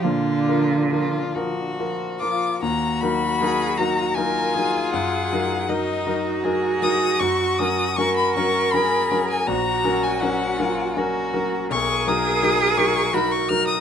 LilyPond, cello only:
\new Staff \with { instrumentName = "Cello" } { \time 3/4 \key ees \minor \tempo 4 = 79 d2 r4 | r4 aes'8 ges'8 bes'8 aes'8~ | aes'4 ges'2~ | ges'4 bes'2 |
ges'4 des'8 f'8 ges'4 | aes'2 fis'4 | }